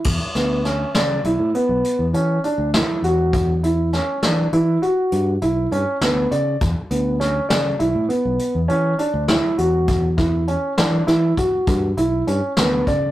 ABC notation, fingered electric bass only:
X:1
M:11/8
L:1/16
Q:1/4=101
K:Edor
V:1 name="Fingered electric bass" clef=bass
E,, z D,,4 C,2 B,,, A,, z B,,, z E,, E,2 z D,,2 z E,,2- | E,,6 E,2 E,2 z2 G,,2 B,,,2 G,, z D,,2 C,2 | E,, z D,,4 C,2 B,,, A,, z B,,, z E,, E,2 z D,,2 z E,,2- | E,,6 E,2 E,2 z2 G,,2 B,,,2 G,, z D,,2 C,2 |]